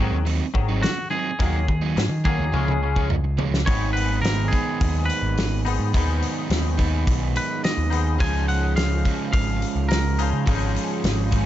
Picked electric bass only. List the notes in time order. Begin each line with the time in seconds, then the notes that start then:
Already playing: G#2
0.12 D#2
0.55 G#1
1.40 D#2
1.69 D#2
1.97 G#2
2.11 D#3
2.39 D#2
2.53 C#2
3.67 G#1
4.23 G#1
4.81 D#2
5.22 G#1
5.80 G#2
5.94 D#2
6.50 D#2
7.07 B1
7.78 D#2
8.20 C#2
8.76 C#2
9.33 G#1
9.76 C#2
10.33 C#3
10.47 G#1
11.04 G#1